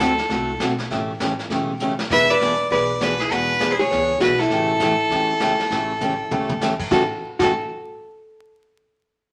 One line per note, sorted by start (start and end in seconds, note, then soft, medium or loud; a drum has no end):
0.00 0.18 D2 medium
0.00 0.11 D3 medium
0.00 0.12 A3 medium
0.00 0.12 C4 medium
0.00 0.61 E4 medium
0.00 0.12 F#4 medium
0.00 0.60 A4 medium
0.00 0.12 A4 medium
0.18 snare soft
0.29 0.55 C2 medium
0.29 0.50 D3 medium
0.29 0.51 A3 medium
0.29 0.51 C4 medium
0.29 0.51 F#4 medium
0.29 0.51 A4 medium
0.29 brush sweep medium
0.29 kick soft
0.29 snare soft
0.59 0.86 B1 medium
0.59 0.72 D3 medium
0.59 0.72 A3 medium
0.59 0.72 C4 medium
0.59 0.72 F#4 medium
0.59 0.72 A4 medium
0.59 kick soft
0.59 snare medium
0.59 hi-hat pedal medium
0.78 snare soft
0.90 1.38 A1 medium
0.90 1.11 C#3 medium
0.90 1.11 E3 medium
0.90 1.11 A3 medium
0.90 1.11 C#4 medium
0.90 1.11 G4 medium
0.90 brush sweep soft
0.90 kick soft
0.90 snare soft
1.20 1.32 C#3 medium
1.20 1.32 E3 medium
1.20 1.32 A3 medium
1.20 1.32 C#4 medium
1.20 1.32 G4 medium
1.20 kick soft
1.20 snare medium
1.20 hi-hat pedal medium
1.39 snare soft
1.50 1.99 E1 medium
1.50 1.71 C#3 soft
1.50 1.71 E3 medium
1.50 1.71 A3 medium
1.50 1.71 C#4 medium
1.50 1.72 G4 medium
1.50 brush sweep soft
1.50 kick soft
1.50 snare soft
1.80 1.92 C#3 medium
1.80 1.92 E3 medium
1.80 1.92 A3 medium
1.80 1.93 C#4 medium
1.80 1.92 G4 medium
1.80 hi-hat pedal soft
1.99 snare medium
2.10 2.59 E1 medium
2.10 2.31 E3 medium
2.10 2.32 B3 medium
2.10 2.32 D4 medium
2.10 2.32 G#4 medium
2.10 2.29 B4 medium
2.10 2.32 E5 loud
2.10 brush sweep soft
2.10 kick medium
2.10 snare soft
2.10 crash medium
2.31 2.71 B4 medium
2.31 2.71 D5 loud
2.41 2.53 E3 medium
2.41 2.53 B3 medium
2.41 2.53 D4 medium
2.41 2.53 G#4 medium
2.41 kick soft
2.41 snare medium
2.41 hi-hat pedal soft
2.71 3.19 B1 medium
2.71 2.91 E3 medium
2.71 2.91 B3 medium
2.71 2.92 D4 medium
2.71 2.91 G#4 medium
2.71 3.02 B4 medium
2.71 3.04 D5 medium
2.71 brush sweep medium
2.71 kick soft
2.71 snare soft
3.01 3.12 E3 medium
3.01 3.12 B3 medium
3.01 3.12 D4 medium
3.01 3.21 F#4 medium
3.01 3.13 G#4 medium
3.01 3.22 B4 loud
3.01 kick soft
3.01 snare medium
3.01 hi-hat pedal soft
3.19 3.32 E4 medium
3.19 3.35 G#4 medium
3.19 snare soft
3.30 3.79 E1 medium
3.30 3.51 E3 medium
3.30 3.51 B3 medium
3.30 3.51 D4 medium
3.30 3.72 F#4 medium
3.30 3.51 G#4 medium
3.30 3.72 B4 loud
3.30 brush sweep soft
3.30 kick soft
3.30 snare soft
3.60 3.72 E3 medium
3.60 3.72 B3 medium
3.60 3.72 D4 medium
3.60 3.72 G#4 medium
3.60 kick soft
3.60 snare medium
3.60 hi-hat pedal medium
3.71 3.78 G#4 medium
3.71 3.82 C5 medium
3.79 4.20 G#4 medium
3.79 4.21 C#5 loud
3.79 snare soft
3.91 4.17 C#2 medium
3.91 4.11 E3 soft
3.91 4.11 B3 medium
3.91 4.11 D4 medium
3.91 4.11 G#4 medium
3.91 brush sweep soft
3.91 kick soft
3.91 snare soft
4.20 4.46 B1 medium
4.20 4.32 E3 medium
4.20 4.32 B3 medium
4.20 4.32 D4 medium
4.20 4.40 F#4 medium
4.20 4.32 G#4 medium
4.20 4.41 B4 medium
4.20 kick soft
4.20 snare medium
4.20 hi-hat pedal soft
4.38 6.62 E4 medium
4.38 6.62 A4 medium
4.38 snare soft
4.50 4.99 A1 medium
4.50 4.72 C#3 medium
4.50 4.71 E3 medium
4.50 4.72 A3 medium
4.50 4.72 C#4 medium
4.50 4.72 G4 medium
4.50 brush sweep soft
4.50 kick soft
4.50 snare soft
4.80 4.92 C#3 medium
4.80 4.93 E3 medium
4.80 4.93 A3 medium
4.80 4.93 C#4 medium
4.80 4.93 G4 medium
4.80 kick soft
4.80 snare medium
4.80 hi-hat pedal medium
5.10 5.59 E2 medium
5.10 5.31 C#3 medium
5.10 5.32 E3 medium
5.10 5.32 A3 medium
5.10 5.32 C#4 medium
5.10 5.32 G4 medium
5.10 brush sweep soft
5.10 kick soft
5.10 snare soft
5.40 5.52 C#3 medium
5.40 5.52 E3 medium
5.40 5.52 A3 medium
5.40 5.52 C#4 medium
5.40 5.53 G4 medium
5.40 kick soft
5.40 snare medium
5.40 hi-hat pedal soft
5.59 snare soft
5.70 6.19 A1 medium
5.70 5.91 C#3 soft
5.70 5.91 E3 medium
5.70 5.92 A3 medium
5.70 5.92 C#4 medium
5.70 5.92 G4 medium
5.70 brush sweep soft
5.70 kick soft
5.70 snare soft
6.01 6.12 C#3 medium
6.01 6.13 E3 medium
6.01 6.13 A3 medium
6.01 6.13 C#4 medium
6.01 6.13 G4 medium
6.01 hi-hat pedal medium
6.01 mid tom soft
6.30 6.79 E2 medium
6.30 6.51 C#3 medium
6.30 6.51 E3 soft
6.30 6.51 A3 medium
6.30 6.52 C#4 medium
6.30 6.52 G4 medium
6.30 mid tom medium
6.49 mid tom medium
6.61 6.73 C#3 medium
6.61 6.73 E3 medium
6.61 6.73 A3 medium
6.61 6.73 C#4 medium
6.61 6.73 G4 medium
6.61 snare medium
6.61 hi-hat pedal medium
6.80 kick medium
6.80 crash medium
6.91 7.02 A1 medium
6.91 7.02 A2 medium
6.91 7.02 C#3 medium
6.91 7.03 E3 medium
6.91 7.03 A3 medium
6.91 7.03 C#4 medium
6.91 7.02 F#4 medium
6.91 7.03 G4 medium
6.91 7.02 A4 medium
6.91 kick medium
6.91 snare medium
7.39 7.51 A1 medium
7.39 7.50 A2 medium
7.39 7.50 C#3 medium
7.39 7.50 E3 medium
7.39 7.50 A3 medium
7.39 7.51 C#4 medium
7.39 7.51 F#4 medium
7.39 7.51 G4 medium
7.39 7.51 A4 medium
7.39 kick medium
7.39 snare medium
7.39 crash medium